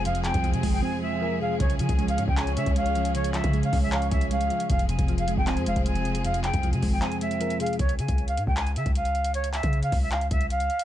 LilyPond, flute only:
\new Staff \with { instrumentName = "Flute" } { \time 4/4 \key des \lydian \tempo 4 = 155 f''8 g''8. aes''8 g''16 aes''8 e''4 f''8 | des''8 aes''8. f''8 g''16 aes''8 e''8 f''4 | des''8 e''8. f''8 e''16 f''8 e''8 f''4 | f''8 aes''8. f''8 g''16 aes''8 f''8 aes''4 |
f''8 g''8. aes''8 g''16 aes''8 e''4 f''8 | des''8 aes''8. f''8 g''16 aes''8 e''8 f''4 | des''8 e''8. f''8 e''16 f''8 e''8 f''4 | }